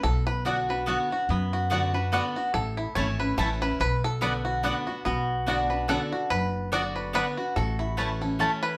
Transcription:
0.03 B1 B2 A4
0.27 B4
0.45 D3 B3 D4 F#4 D5 F#5
0.69 D4 F#4 B4
0.86 D3 B3 D4 F#4 D5 F#5
1.10 D4 F#4
1.29 F#2 B3
1.53 F#4
1.70 D3 B3 D4 F#4 D5 F#5
1.94 D4 F#4 B4
2.12 D3 B3 D4 F#4 D5 F#5
2.35 D4 F#4
2.54 A1 A2 A4
2.77 E4
2.95 G#1 E3 A3 C#4 E4 C#5 A5
3.19 C#4 E4 B4
3.38 A1 E3 A3 C#4 E4 A4 C#5 A5
3.61 C#4 E4 B4
3.80 B1 B2 B4
4.04 A4
4.21 D3 B3 D4 F#4 B4 D5 F#5
4.45 F#4
4.63 D3 B3 D4 F#4 D5 F#5
4.87 D4 F#4
5.05 B1 B2 B3 F#4
5.47 D3 B3 D4 F#4 D5 F#5
5.70 D4 F#4 B4
5.88 D3 B3 D4 F#4 A4 D5 F#5
6.12 D4 F#4
6.30 F#1 F#2 B4
6.72 D3 B3 D4 F#4 D5 F#5
6.96 B4
7.13 D3 B3 D4 F#4 B4 D5 F#5
7.37 D4 F#4
7.56 A1 A2 F#4 A4
7.79 E4
7.97 E3 A3 C#4 E4 B4 C#5 A5
8.21 C#4 E4 A4
8.39 E3 A3 C#4 E4 C#5 A5
8.63 B4

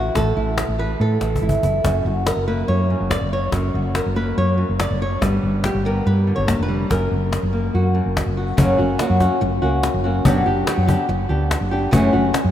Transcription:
Already playing: A2 E3 E4 F#4
0.15 A1 A2 A4, cajon bass, cajon slap
0.36 A1 E4
0.58 cajon slap
0.68 A1
0.79 E3 B4, cajon slap
1.00 A2 A4
1.21 A1 E3, cajon slap
1.36 cajon bass
1.42 G#1 E4
1.49 cajon bass
1.63 F#1 E4, cajon bass
1.84 F#1 F#2, cajon bass, cajon slap
2.05 F#1 F#4
2.26 A#4, cajon slap
2.37 F#1
2.48 A#3 B4
2.68 F#2 C#5
2.90 F#2
3.00 F#1
3.10 D5, cajon bass, cajon slap
3.21 F#1
3.33 C#5
3.52 F#1 F#2, cajon bass, cajon slap
3.74 F#1 F#4
3.95 A#4, cajon slap
4.06 F#1
4.16 A#3 B4, cajon slap
4.38 F#2 C#5
4.58 F#2
4.69 F#1
4.80 D5, cajon slap
4.90 F#1
5.02 C#5
5.21 G1 G3 B3 D4 G4, cajon bass, cajon slap
5.43 G1
5.64 G4, cajon slap
5.75 G1
5.84 B3 A#4, cajon slap
6.06 G2 B4, cajon slap
6.27 D3
6.36 G1 C#5
6.48 A#3, cajon bass, cajon slap
6.59 F1 B4
6.68 G3
6.90 F#1 F#2 A#4, cajon bass, cajon slap
7.11 F#1
7.33 cajon slap
7.43 F#1
7.53 A#3, cajon slap
7.74 F#2 F#4, cajon slap
7.95 F#2
8.06 F#1
8.17 cajon bass, cajon slap
8.26 F#1
8.37 F#4
8.57 F#1 C#3 F#3 A#3 C#4 F#4, cajon bass
8.78 F#1 A#3 C#4 F#4, cajon slap
8.99 F#3 A#3 C#4 F#4, cajon slap
9.10 F#2
9.20 A#3 C#4 F#4, cajon bass, cajon slap
9.41 F#1, muted nylon-string guitar stroke
9.62 C#2 A#3 C#4 F#4
9.83 cajon slap
9.94 F#1
10.04 A#3 C#4 F#4
10.25 F#1 B2 F#3 B3 D4 G4, cajon bass
10.46 F#1 B3 D4 G4
10.67 F#3 B3 D4 G4, cajon slap
10.78 F#2
10.87 B3 D4 G4, cajon bass
11.09 F#1, muted nylon-string guitar stroke
11.29 D2 B3 D4 G4
11.51 cajon slap
11.61 F#1
11.71 B3 D4 G4
11.91 F#1 C#3 E3 A3 C#4 F#4, cajon bass
12.13 F#1 A3 C#4 F#4
12.33 muted nylon-string guitar stroke, cajon slap
12.45 F#2

